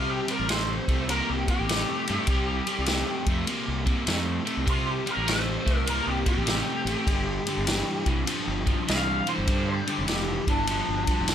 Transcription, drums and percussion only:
0.28 ride medium
0.49 snare loud
0.49 ride loud
0.88 kick medium
0.88 ride medium
1.09 ride medium
1.48 kick medium
1.48 ride medium
1.69 snare loud
1.69 ride medium
2.07 ride medium
2.27 kick loud
2.27 ride loud
2.67 ride medium
2.86 snare loud
2.86 ride medium
3.26 kick medium
3.26 ride medium
3.47 ride medium
3.86 kick medium
3.86 ride medium
4.07 snare loud
4.07 ride medium
4.47 ride medium
4.67 kick loud
4.67 ride medium
5.07 ride medium
5.28 snare loud
5.28 ride loud
5.67 kick medium
5.67 ride medium
5.87 ride medium
6.26 kick medium
6.26 ride medium
6.47 snare loud
6.47 ride medium
6.87 ride medium
7.07 kick loud
7.07 ride medium
7.47 ride medium
7.67 snare loud
7.67 ride loud
8.06 kick medium
8.06 ride medium
8.27 ride medium
8.67 kick medium
8.67 ride medium
8.88 snare loud
8.88 ride medium
9.27 ride medium
9.47 kick loud
9.47 ride medium
9.87 ride medium
10.08 snare loud
10.08 ride loud
10.47 kick medium
10.47 ride medium
10.67 ride medium
11.07 kick medium
11.07 ride medium
11.28 snare loud
11.28 ride medium

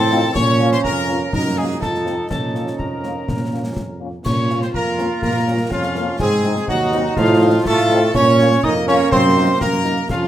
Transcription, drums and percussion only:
0.11 snare medium
0.35 concert bass drum loud
0.35 snare medium
0.35 crash soft
0.60 snare medium
0.72 snare medium
0.84 concert bass drum medium
1.09 snare medium
1.33 concert bass drum medium
1.33 snare medium
1.82 concert bass drum medium
1.82 snare medium
1.95 snare medium
2.07 snare medium
2.31 concert bass drum medium
2.31 snare medium
2.31 crash soft
2.55 snare medium
2.67 snare medium
2.79 concert bass drum medium
3.04 snare medium
3.28 concert bass drum medium
3.28 snare medium
3.76 concert bass drum medium
3.76 snare medium
4.26 concert bass drum loud
4.26 snare medium
4.26 crash medium
4.50 snare medium
4.62 snare medium
4.74 concert bass drum medium
4.99 snare medium
5.22 concert bass drum medium
5.22 snare medium
5.71 concert bass drum medium
5.71 snare medium
5.83 snare medium
5.95 snare medium
6.19 concert bass drum loud
6.19 snare medium
6.19 crash soft
6.44 snare medium
6.56 snare medium
6.68 concert bass drum medium
6.92 snare medium
7.17 concert bass drum loud
7.17 snare medium
7.65 concert bass drum medium
7.65 snare medium
7.78 snare medium
7.90 snare medium
8.14 concert bass drum loud
8.14 snare medium
8.14 crash soft
8.39 snare medium
8.52 snare medium
8.63 concert bass drum medium
8.88 snare medium
9.12 concert bass drum loud
9.12 snare medium
9.61 concert bass drum medium
9.61 snare medium
9.73 snare medium
9.85 snare medium
10.09 concert bass drum medium
10.09 snare medium
10.09 crash soft

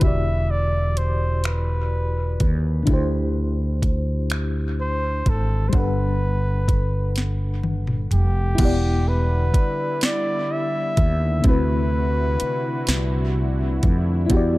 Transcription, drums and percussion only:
0.01 kick loud
0.01 closed hi-hat medium
0.97 closed hi-hat medium
1.44 finger snap medium
1.44 closed hi-hat medium
2.40 kick medium
2.40 closed hi-hat medium
2.87 kick loud
2.87 closed hi-hat medium
3.82 kick medium
3.82 closed hi-hat medium
4.30 finger snap medium
4.30 closed hi-hat medium
5.26 kick medium
5.26 closed hi-hat medium
5.73 kick loud
5.73 closed hi-hat medium
6.68 kick medium
6.68 closed hi-hat medium
7.16 snare medium
7.16 closed hi-hat medium
7.63 high tom medium
7.87 mid tom medium
8.11 closed hi-hat medium
8.11 mid tom medium
8.58 kick loud
8.58 closed hi-hat medium
8.58 crash medium
9.54 kick medium
9.54 closed hi-hat medium
10.01 snare loud
10.01 closed hi-hat medium
10.97 kick medium
10.97 closed hi-hat medium
11.44 kick loud
11.44 closed hi-hat medium
12.40 closed hi-hat medium
12.87 snare loud
12.87 closed hi-hat medium
13.83 kick medium
13.83 closed hi-hat medium
14.30 kick loud
14.30 closed hi-hat medium

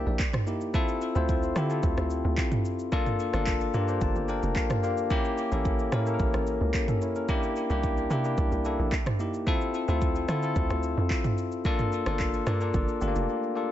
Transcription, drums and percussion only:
0.19 kick medium
0.19 clap medium
0.19 shaker medium
0.33 cross-stick loud
0.33 mid tom loud
0.33 shaker medium
0.47 shaker medium
0.61 shaker medium
0.74 kick loud
0.74 shaker medium
0.88 shaker soft
1.02 shaker loud
1.15 shaker medium
1.29 kick medium
1.29 shaker medium
1.43 shaker soft
1.56 cross-stick medium
1.56 shaker loud
1.70 shaker medium
1.83 kick loud
1.83 shaker medium
1.97 cross-stick medium
1.97 shaker soft
2.10 shaker loud
2.38 kick medium
2.38 clap medium
2.38 shaker medium
2.52 mid tom loud
2.52 shaker medium
2.65 shaker loud
2.79 shaker medium
2.92 kick loud
2.92 shaker medium
3.06 mid tom medium
3.06 shaker soft
3.20 shaker loud
3.33 cross-stick medium
3.33 shaker medium
3.47 kick medium
3.47 clap medium
3.47 shaker medium
3.61 shaker medium
3.74 shaker loud
3.88 shaker medium
4.01 kick loud
4.01 shaker medium
4.16 shaker soft
4.29 shaker medium
4.43 shaker medium
4.56 kick medium
4.56 clap medium
4.56 shaker medium
4.70 cross-stick loud
4.70 mid tom loud
4.70 shaker medium
4.84 shaker medium
4.97 shaker medium
5.10 kick loud
5.10 shaker medium
5.25 shaker soft
5.38 shaker loud
5.52 shaker medium
5.65 kick loud
5.65 shaker medium
5.79 shaker soft
5.92 cross-stick loud
5.92 shaker loud
6.06 shaker medium
6.19 kick loud
6.19 shaker medium
6.34 cross-stick medium
6.34 shaker soft
6.47 shaker medium
6.74 kick medium
6.74 clap loud
6.74 shaker medium
6.88 mid tom loud
6.88 shaker medium
7.02 shaker medium
7.16 shaker medium
7.29 kick loud
7.29 shaker medium
7.43 shaker soft
7.56 shaker loud
7.70 shaker medium
7.83 kick medium
7.83 shaker medium
7.97 shaker medium
8.11 shaker loud
8.25 shaker medium
8.38 kick loud
8.38 shaker medium
8.52 shaker soft
8.65 shaker medium
8.92 kick medium
8.92 clap medium
8.92 shaker medium
9.06 cross-stick loud
9.06 mid tom loud
9.06 shaker medium
9.20 shaker loud
9.34 shaker medium
9.47 kick loud
9.47 shaker medium
9.61 shaker soft
9.74 shaker loud
9.88 shaker medium
10.02 kick loud
10.02 shaker medium
10.15 shaker medium
10.29 cross-stick medium
10.29 shaker loud
10.43 shaker medium
10.56 kick loud
10.56 shaker medium
10.70 cross-stick medium
10.70 shaker soft
10.83 shaker loud
11.10 kick medium
11.10 clap loud
11.10 shaker medium
11.24 mid tom loud
11.24 shaker medium
11.38 shaker loud
11.52 shaker medium
11.65 kick loud
11.65 shaker medium
11.79 mid tom medium
11.79 shaker soft
11.92 shaker loud
12.06 cross-stick loud
12.06 shaker medium
12.20 kick medium
12.20 clap medium
12.20 shaker medium
12.34 shaker medium
12.47 cross-stick loud
12.47 shaker loud
12.61 shaker medium
12.74 kick loud
12.74 shaker medium
12.88 shaker soft
13.01 shaker medium
13.16 shaker medium

